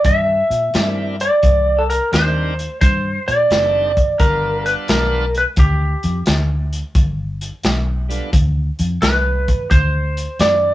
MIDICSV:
0, 0, Header, 1, 5, 480
1, 0, Start_track
1, 0, Tempo, 689972
1, 994, Time_signature, 4, 2, 24, 8
1, 7473, End_track
2, 0, Start_track
2, 0, Title_t, "Lead electric guitar"
2, 0, Program_c, 0, 29
2, 39, Note_on_c, 0, 76, 93
2, 811, Note_off_c, 0, 76, 0
2, 842, Note_on_c, 0, 74, 89
2, 1242, Note_on_c, 0, 69, 61
2, 1266, Note_off_c, 0, 74, 0
2, 1312, Note_off_c, 0, 69, 0
2, 1319, Note_on_c, 0, 70, 80
2, 1481, Note_off_c, 0, 70, 0
2, 1484, Note_on_c, 0, 72, 85
2, 1948, Note_off_c, 0, 72, 0
2, 1957, Note_on_c, 0, 72, 86
2, 2255, Note_off_c, 0, 72, 0
2, 2280, Note_on_c, 0, 74, 92
2, 2920, Note_on_c, 0, 70, 89
2, 2935, Note_off_c, 0, 74, 0
2, 3217, Note_off_c, 0, 70, 0
2, 3240, Note_on_c, 0, 71, 81
2, 3283, Note_off_c, 0, 71, 0
2, 3408, Note_on_c, 0, 70, 80
2, 3733, Note_off_c, 0, 70, 0
2, 3741, Note_on_c, 0, 71, 81
2, 3780, Note_off_c, 0, 71, 0
2, 3891, Note_on_c, 0, 67, 71
2, 4335, Note_off_c, 0, 67, 0
2, 6275, Note_on_c, 0, 71, 86
2, 6752, Note_off_c, 0, 71, 0
2, 6755, Note_on_c, 0, 72, 99
2, 7239, Note_on_c, 0, 74, 88
2, 7250, Note_off_c, 0, 72, 0
2, 7473, Note_off_c, 0, 74, 0
2, 7473, End_track
3, 0, Start_track
3, 0, Title_t, "Tonewheel organ"
3, 0, Program_c, 1, 16
3, 514, Note_on_c, 1, 55, 64
3, 518, Note_on_c, 1, 60, 55
3, 520, Note_on_c, 1, 62, 57
3, 524, Note_on_c, 1, 70, 69
3, 528, Note_on_c, 1, 64, 55
3, 804, Note_off_c, 1, 55, 0
3, 806, Note_off_c, 1, 60, 0
3, 806, Note_off_c, 1, 62, 0
3, 809, Note_off_c, 1, 70, 0
3, 811, Note_off_c, 1, 64, 0
3, 1472, Note_on_c, 1, 55, 53
3, 1473, Note_on_c, 1, 60, 50
3, 1478, Note_on_c, 1, 62, 51
3, 1478, Note_on_c, 1, 63, 49
3, 1482, Note_on_c, 1, 70, 63
3, 1763, Note_off_c, 1, 55, 0
3, 1763, Note_off_c, 1, 60, 0
3, 1766, Note_off_c, 1, 62, 0
3, 1766, Note_off_c, 1, 63, 0
3, 1768, Note_off_c, 1, 70, 0
3, 2433, Note_on_c, 1, 60, 57
3, 2437, Note_on_c, 1, 55, 59
3, 2441, Note_on_c, 1, 62, 57
3, 2441, Note_on_c, 1, 63, 59
3, 2447, Note_on_c, 1, 69, 63
3, 2723, Note_off_c, 1, 60, 0
3, 2725, Note_off_c, 1, 55, 0
3, 2727, Note_off_c, 1, 62, 0
3, 2727, Note_off_c, 1, 63, 0
3, 2730, Note_off_c, 1, 69, 0
3, 2915, Note_on_c, 1, 55, 64
3, 2918, Note_on_c, 1, 59, 58
3, 2920, Note_on_c, 1, 62, 59
3, 2925, Note_on_c, 1, 65, 60
3, 2927, Note_on_c, 1, 81, 72
3, 3652, Note_off_c, 1, 55, 0
3, 3654, Note_off_c, 1, 59, 0
3, 3655, Note_off_c, 1, 62, 0
3, 3658, Note_off_c, 1, 65, 0
3, 3659, Note_off_c, 1, 81, 0
3, 5626, Note_on_c, 1, 55, 65
3, 5633, Note_on_c, 1, 59, 59
3, 5633, Note_on_c, 1, 62, 58
3, 5633, Note_on_c, 1, 65, 58
3, 5638, Note_on_c, 1, 69, 70
3, 5774, Note_off_c, 1, 55, 0
3, 5777, Note_off_c, 1, 59, 0
3, 5777, Note_off_c, 1, 65, 0
3, 5778, Note_off_c, 1, 62, 0
3, 5780, Note_off_c, 1, 69, 0
3, 7473, End_track
4, 0, Start_track
4, 0, Title_t, "Fingered electric bass"
4, 0, Program_c, 2, 33
4, 32, Note_on_c, 2, 43, 84
4, 286, Note_off_c, 2, 43, 0
4, 351, Note_on_c, 2, 46, 81
4, 477, Note_off_c, 2, 46, 0
4, 518, Note_on_c, 2, 43, 80
4, 895, Note_off_c, 2, 43, 0
4, 997, Note_on_c, 2, 36, 80
4, 1374, Note_off_c, 2, 36, 0
4, 1480, Note_on_c, 2, 39, 79
4, 1856, Note_off_c, 2, 39, 0
4, 1960, Note_on_c, 2, 43, 83
4, 2212, Note_off_c, 2, 43, 0
4, 2284, Note_on_c, 2, 46, 78
4, 2406, Note_off_c, 2, 46, 0
4, 2439, Note_on_c, 2, 30, 82
4, 2816, Note_off_c, 2, 30, 0
4, 2921, Note_on_c, 2, 31, 81
4, 3297, Note_off_c, 2, 31, 0
4, 3402, Note_on_c, 2, 35, 78
4, 3778, Note_off_c, 2, 35, 0
4, 3879, Note_on_c, 2, 38, 86
4, 4131, Note_off_c, 2, 38, 0
4, 4202, Note_on_c, 2, 41, 79
4, 4324, Note_off_c, 2, 41, 0
4, 4365, Note_on_c, 2, 38, 81
4, 4739, Note_off_c, 2, 38, 0
4, 4837, Note_on_c, 2, 31, 80
4, 5214, Note_off_c, 2, 31, 0
4, 5317, Note_on_c, 2, 35, 75
4, 5695, Note_off_c, 2, 35, 0
4, 5793, Note_on_c, 2, 38, 80
4, 6048, Note_off_c, 2, 38, 0
4, 6118, Note_on_c, 2, 41, 74
4, 6242, Note_off_c, 2, 41, 0
4, 6275, Note_on_c, 2, 36, 83
4, 6653, Note_off_c, 2, 36, 0
4, 6758, Note_on_c, 2, 38, 73
4, 7136, Note_off_c, 2, 38, 0
4, 7232, Note_on_c, 2, 42, 78
4, 7473, Note_off_c, 2, 42, 0
4, 7473, End_track
5, 0, Start_track
5, 0, Title_t, "Drums"
5, 31, Note_on_c, 9, 42, 77
5, 33, Note_on_c, 9, 36, 105
5, 100, Note_off_c, 9, 42, 0
5, 102, Note_off_c, 9, 36, 0
5, 355, Note_on_c, 9, 42, 58
5, 425, Note_off_c, 9, 42, 0
5, 513, Note_on_c, 9, 42, 75
5, 521, Note_on_c, 9, 38, 100
5, 583, Note_off_c, 9, 42, 0
5, 591, Note_off_c, 9, 38, 0
5, 835, Note_on_c, 9, 42, 55
5, 905, Note_off_c, 9, 42, 0
5, 992, Note_on_c, 9, 42, 76
5, 996, Note_on_c, 9, 36, 98
5, 1062, Note_off_c, 9, 42, 0
5, 1066, Note_off_c, 9, 36, 0
5, 1323, Note_on_c, 9, 42, 57
5, 1393, Note_off_c, 9, 42, 0
5, 1480, Note_on_c, 9, 42, 74
5, 1488, Note_on_c, 9, 38, 100
5, 1550, Note_off_c, 9, 42, 0
5, 1558, Note_off_c, 9, 38, 0
5, 1801, Note_on_c, 9, 42, 59
5, 1871, Note_off_c, 9, 42, 0
5, 1957, Note_on_c, 9, 42, 82
5, 1959, Note_on_c, 9, 36, 106
5, 2027, Note_off_c, 9, 42, 0
5, 2029, Note_off_c, 9, 36, 0
5, 2281, Note_on_c, 9, 42, 57
5, 2351, Note_off_c, 9, 42, 0
5, 2438, Note_on_c, 9, 42, 75
5, 2447, Note_on_c, 9, 38, 93
5, 2508, Note_off_c, 9, 42, 0
5, 2516, Note_off_c, 9, 38, 0
5, 2761, Note_on_c, 9, 36, 69
5, 2761, Note_on_c, 9, 42, 54
5, 2830, Note_off_c, 9, 42, 0
5, 2831, Note_off_c, 9, 36, 0
5, 2919, Note_on_c, 9, 42, 72
5, 2920, Note_on_c, 9, 36, 101
5, 2988, Note_off_c, 9, 42, 0
5, 2989, Note_off_c, 9, 36, 0
5, 3240, Note_on_c, 9, 42, 55
5, 3310, Note_off_c, 9, 42, 0
5, 3396, Note_on_c, 9, 42, 73
5, 3404, Note_on_c, 9, 38, 101
5, 3465, Note_off_c, 9, 42, 0
5, 3474, Note_off_c, 9, 38, 0
5, 3719, Note_on_c, 9, 42, 59
5, 3789, Note_off_c, 9, 42, 0
5, 3871, Note_on_c, 9, 42, 77
5, 3876, Note_on_c, 9, 36, 114
5, 3940, Note_off_c, 9, 42, 0
5, 3946, Note_off_c, 9, 36, 0
5, 4195, Note_on_c, 9, 42, 56
5, 4265, Note_off_c, 9, 42, 0
5, 4353, Note_on_c, 9, 42, 74
5, 4361, Note_on_c, 9, 38, 99
5, 4423, Note_off_c, 9, 42, 0
5, 4431, Note_off_c, 9, 38, 0
5, 4680, Note_on_c, 9, 42, 56
5, 4749, Note_off_c, 9, 42, 0
5, 4835, Note_on_c, 9, 42, 73
5, 4836, Note_on_c, 9, 36, 97
5, 4905, Note_off_c, 9, 36, 0
5, 4905, Note_off_c, 9, 42, 0
5, 5157, Note_on_c, 9, 42, 58
5, 5226, Note_off_c, 9, 42, 0
5, 5311, Note_on_c, 9, 42, 75
5, 5320, Note_on_c, 9, 38, 96
5, 5381, Note_off_c, 9, 42, 0
5, 5389, Note_off_c, 9, 38, 0
5, 5638, Note_on_c, 9, 42, 57
5, 5708, Note_off_c, 9, 42, 0
5, 5795, Note_on_c, 9, 36, 106
5, 5795, Note_on_c, 9, 42, 85
5, 5865, Note_off_c, 9, 36, 0
5, 5865, Note_off_c, 9, 42, 0
5, 6114, Note_on_c, 9, 42, 57
5, 6183, Note_off_c, 9, 42, 0
5, 6274, Note_on_c, 9, 42, 75
5, 6282, Note_on_c, 9, 38, 103
5, 6343, Note_off_c, 9, 42, 0
5, 6352, Note_off_c, 9, 38, 0
5, 6596, Note_on_c, 9, 42, 55
5, 6597, Note_on_c, 9, 36, 72
5, 6665, Note_off_c, 9, 42, 0
5, 6667, Note_off_c, 9, 36, 0
5, 6752, Note_on_c, 9, 42, 77
5, 6755, Note_on_c, 9, 36, 100
5, 6822, Note_off_c, 9, 42, 0
5, 6825, Note_off_c, 9, 36, 0
5, 7076, Note_on_c, 9, 42, 53
5, 7146, Note_off_c, 9, 42, 0
5, 7231, Note_on_c, 9, 42, 69
5, 7239, Note_on_c, 9, 38, 91
5, 7301, Note_off_c, 9, 42, 0
5, 7309, Note_off_c, 9, 38, 0
5, 7473, End_track
0, 0, End_of_file